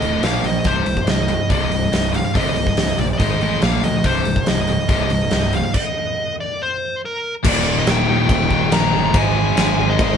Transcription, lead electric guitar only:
0.00 0.24 D#5 medium
0.24 0.45 F5 medium
0.46 0.67 D#5 medium
0.67 1.10 C5 medium
1.10 1.48 D#5 medium
1.52 2.11 D#5 medium
2.16 2.36 F5 medium
2.37 3.00 D#5 medium
3.01 3.06 D5 medium
3.13 3.18 D5 medium
3.18 3.63 D#5 medium
3.63 3.84 F5 medium
3.85 4.06 D#5 medium
4.06 4.49 C5 medium
4.48 4.87 D#5 medium
4.90 5.54 D#5 medium
5.55 5.74 F5 medium
5.75 6.34 D#5 medium
6.40 6.61 D5 medium
6.62 7.00 C5 medium
7.05 7.33 A#4 medium
7.49 7.79 D5 loud
7.79 7.89 D#5 loud
7.89 8.31 G5 medium
8.33 8.75 G5 medium
8.73 9.04 A#5 loud
9.06 9.16 A#5 medium
9.17 9.45 G#5 loud
9.47 9.90 G#5 loud
9.90 10.17 D#5 medium

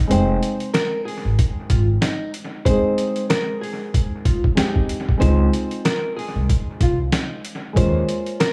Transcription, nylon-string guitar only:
0.11 0.70 C5 loud
0.74 1.03 A#4 medium
1.05 1.34 G#4 medium
1.70 1.87 F4 medium
2.01 2.30 D#4 medium
2.65 3.25 C5 loud
3.30 3.58 A#4 medium
3.61 3.90 G#4 medium
4.25 4.42 F4 medium
4.57 4.86 D#4 medium
5.20 5.80 C5 loud
5.85 6.14 A#4 medium
6.16 6.45 G#4 medium
6.82 6.98 F4 medium
7.12 7.41 D#4 medium
7.77 8.37 C5 loud
8.40 8.53 A#4 medium

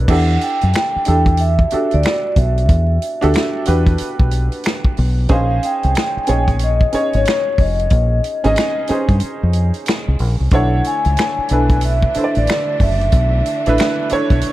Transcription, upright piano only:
0.00 0.08 D4 medium
0.00 0.09 E4 medium
0.00 0.10 A4 medium
0.00 0.10 A#4 medium
0.00 0.10 D5 medium
0.08 0.86 D4 loud
0.08 0.86 E4 medium
0.08 0.86 G4 medium
0.08 0.87 A4 loud
1.06 1.60 D4 medium
1.06 1.60 E4 medium
1.06 1.61 G4 medium
1.06 1.61 A4 medium
1.72 2.72 D4 medium
1.72 2.72 F#4 medium
1.72 2.73 G4 medium
1.72 2.73 A4 medium
3.21 3.58 D4 loud
3.21 3.58 F#4 medium
3.21 3.59 G4 medium
3.21 3.59 A4 loud
3.66 4.67 D4 medium
3.66 4.67 F#4 medium
3.66 4.68 G4 medium
3.66 4.68 B4 medium
5.29 6.07 C#4 medium
5.29 6.07 D#4 medium
5.29 6.08 G#4 medium
5.29 6.08 C5 loud
6.27 6.81 C#4 medium
6.27 6.82 D#4 medium
6.27 6.82 G#4 medium
6.27 6.82 C#5 medium
6.93 7.93 C#4 medium
6.93 7.94 D#4 medium
6.93 7.94 G#4 medium
6.93 7.94 C#5 medium
8.44 8.80 C#4 loud
8.44 8.80 D#4 medium
8.44 8.81 G#4 medium
8.44 8.81 D#5 loud
8.89 9.89 C#4 medium
8.89 9.90 D#4 medium
8.89 9.90 G#4 medium
8.89 9.90 C5 medium
10.53 11.30 D4 loud
10.53 11.30 E4 medium
10.53 11.30 A4 medium
10.53 11.30 C#5 loud
11.51 12.04 D4 medium
11.51 12.04 E4 medium
11.51 12.05 A4 medium
11.51 12.05 B4 medium
12.15 13.16 D4 medium
12.15 13.16 E4 medium
12.15 13.16 A4 medium
12.15 12.24 C5 medium
12.24 13.20 D5 medium
13.67 14.02 D4 loud
13.67 14.03 E4 loud
13.67 14.03 A4 medium
13.67 14.04 B4 loud
14.11 14.53 D4 medium
14.11 14.53 E4 medium
14.11 14.53 A4 medium
14.11 14.53 C#5 loud

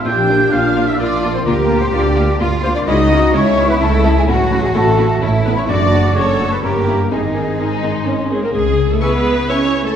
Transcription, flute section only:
0.05 0.51 G6 loud
0.51 0.87 F6 medium
0.88 1.00 E6 medium
0.99 1.34 D6 medium
1.36 1.41 C6 medium
1.46 1.80 A#5 loud
1.83 1.88 C6 medium
1.93 2.39 D6 medium
2.64 2.69 C6 loud
2.77 2.82 D6 medium
2.87 3.33 D#6 loud
3.35 3.69 C#6 loud
3.71 3.75 B5 loud
3.81 4.16 A5 loud
4.17 4.22 G#5 medium
4.28 4.62 F#5 loud
4.65 4.69 G#5 medium
4.75 5.21 A5 loud
5.45 5.56 B5 loud
5.58 5.69 C#6 medium
5.69 6.15 D6 loud
6.16 6.52 C#6 loud
6.52 6.58 B5 medium
6.63 7.10 A#5 medium
7.11 8.28 G#5 medium
9.02 9.11 C#6 medium
9.50 9.58 C#6 medium

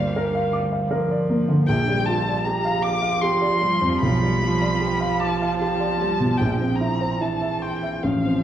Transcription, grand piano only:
0.00 1.64 D2 medium
0.00 1.30 A#3 medium
0.00 1.69 F4 medium
0.00 0.27 D5 medium
0.16 0.45 A#4 medium
0.35 0.64 F5 medium
0.53 0.82 D6 medium
0.72 1.01 F5 medium
0.91 1.20 A#4 medium
1.11 1.40 D5 medium
1.30 1.60 A#3 medium
1.48 1.67 D3 medium
1.68 3.97 A#1 medium
1.88 2.19 G3 medium
2.08 2.39 F4 medium
2.29 2.58 D5 medium
2.46 2.76 G4 medium
2.65 2.95 F5 medium
2.84 3.14 D6 medium
3.02 3.33 F5 medium
3.23 3.53 G4 medium
3.41 3.73 D5 medium
3.62 3.93 G3 medium
3.81 4.01 F2 medium
4.02 6.35 B1 medium
4.22 4.53 G3 medium
4.42 4.73 F4 medium
4.61 4.92 D5 medium
4.80 5.12 G4 medium
5.01 5.32 F5 medium
5.21 5.52 D6 medium
5.42 5.73 F5 medium
5.61 5.92 G4 medium
5.80 6.11 D5 medium
6.01 6.31 G3 medium
6.20 6.39 B2 medium
6.41 8.00 A#1 medium
6.60 6.92 C4 medium
6.81 7.12 E4 medium
7.01 7.33 C5 medium
7.21 7.53 E4 medium
7.42 7.74 E5 medium
7.62 7.95 C6 medium
7.83 8.03 E5 soft
8.03 8.43 A1 medium
8.25 8.43 C4 soft

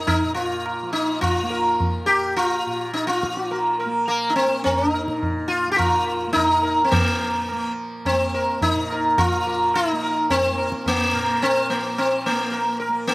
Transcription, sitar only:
0.07 0.34 D#4 medium
0.34 0.92 F4 medium
0.93 1.21 D#4 medium
1.21 2.11 F4 medium
1.50 1.78 A#4 soft
2.06 2.34 G4 medium
2.36 2.93 F4 medium
2.93 3.07 D#4 medium
3.07 3.89 F4 medium
3.51 3.78 A#4 soft
3.80 4.06 A#4 soft
4.08 4.30 A#3 medium
4.08 4.35 A#4 soft
4.29 4.35 D#4 medium
4.36 4.63 C4 medium
4.64 4.92 C4 medium
4.64 4.92 A#4 soft
4.92 5.53 D#4 medium
5.48 5.71 F4 medium
5.72 5.77 G4 medium
5.76 6.32 F4 medium
5.76 6.05 A#4 soft
6.33 6.84 D#4 medium
6.33 6.62 A#4 soft
6.63 6.90 A#4 soft
6.84 6.92 C4 soft
6.91 7.73 A#3 medium
7.20 7.47 A#4 soft
8.06 8.62 C4 medium
8.34 8.60 A#4 soft
8.62 9.18 D#4 medium
8.92 9.17 A#4 soft
9.18 9.75 F4 medium
9.47 9.73 A#4 soft
9.75 10.30 D#4 medium
10.03 10.29 A#4 soft
10.30 10.88 C4 medium
10.88 11.45 A#3 medium
11.14 11.41 A#4 soft
11.42 11.71 C4 medium
11.70 11.99 A#3 medium
11.98 12.27 C4 medium
12.26 12.78 A#3 medium
12.52 12.78 A#4 soft
12.80 13.07 A#4 soft
13.07 13.14 A#3 medium

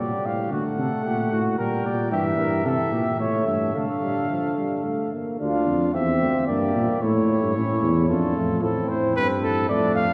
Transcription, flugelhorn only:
0.00 0.51 G4 medium
0.52 0.64 F#4 medium
0.79 1.04 A4 medium
1.05 1.31 G4 medium
1.32 1.57 F#4 medium
1.58 1.85 A#4 medium
1.86 2.11 D5 medium
2.12 2.24 G4 medium
2.39 2.67 A#4 medium
2.65 2.93 A4 medium
2.92 3.19 G4 medium
3.20 3.46 C#5 medium
3.47 3.74 E5 medium
3.75 5.11 A4 medium
5.41 5.96 F4 medium
5.94 6.48 G4 medium
6.49 7.03 G4 medium
7.02 7.55 E4 medium
7.56 8.08 E4 medium
8.09 8.62 F4 medium
8.63 9.70 E4 medium
9.69 10.13 D4 medium

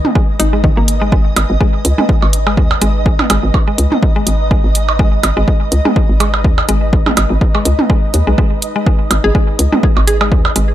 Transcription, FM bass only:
0.40 0.69 G#1 medium
0.77 1.30 G#1 medium
1.36 1.45 G#1 loud
1.50 1.57 G#1 loud
1.85 1.93 C#2 loud
2.23 2.59 G#1 loud
2.57 2.74 D#2 medium
2.82 3.24 G#1 medium
3.30 3.38 G#1 loud
3.43 3.50 G#1 loud
3.78 3.87 C#2 loud
4.27 4.56 G#1 medium
4.64 5.17 G#1 medium
5.23 5.32 G#1 loud
5.37 5.44 G#1 loud
5.72 5.80 C#2 loud
6.09 6.46 G#1 medium
6.44 6.61 D#2 medium
6.69 7.11 G#1 medium
7.17 7.26 G#1 loud
7.30 7.37 G#1 loud
7.65 7.74 C#2 loud
8.14 8.22 D#2 medium
8.27 8.34 B1 medium
9.11 9.19 G#1 loud
9.24 9.31 G#1 loud
9.59 9.67 C#2 loud
9.97 10.33 G#1 medium
10.32 10.48 D#2 medium
10.56 10.74 G#1 medium

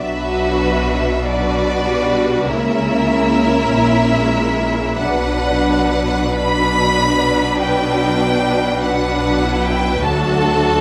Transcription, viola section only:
0.00 1.21 F#3 soft
0.00 1.21 D4 soft
1.24 1.85 F#3 soft
1.24 2.45 D4 soft
1.86 2.47 G3 soft
2.46 4.14 A#3 soft
2.46 4.98 C#4 soft
4.14 4.97 G#3 soft
4.98 6.32 F#3 soft
4.98 6.32 D4 soft
6.35 8.78 F#3 soft
6.35 8.78 D4 soft
8.81 9.99 F#3 soft
8.81 10.00 D4 soft
10.01 10.81 F#3 soft
10.01 10.81 D4 soft

